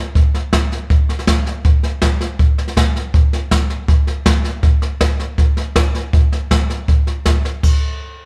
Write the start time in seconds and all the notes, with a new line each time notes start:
0.15 kick, snare
0.34 snare
0.53 kick, snare, hi-hat pedal
0.72 snare
0.90 kick, snare
1.09 snare
1.19 snare
1.27 kick, snare, hi-hat pedal
1.46 snare
1.65 kick, snare
1.83 snare
2.02 kick, snare, hi-hat pedal
2.21 snare
2.39 kick, snare
2.58 snare
2.68 snare
2.77 kick, snare, hi-hat pedal
2.96 snare
3.14 kick, snare
3.33 snare
3.51 kick, snare, hi-hat pedal
3.70 snare
3.88 kick, snare
4.07 snare
4.26 kick, snare, hi-hat pedal
4.44 snare
4.63 kick, snare
4.82 snare
5.01 kick, snare, hi-hat pedal
5.20 snare
5.38 kick, snare
5.57 snare
5.76 kick, snare, hi-hat pedal
5.95 snare
6.13 kick, snare
6.32 snare
6.51 kick, snare, hi-hat pedal
6.70 snare
6.88 kick, snare
7.07 snare
7.26 kick, snare, hi-hat pedal
7.45 snare
7.63 kick, crash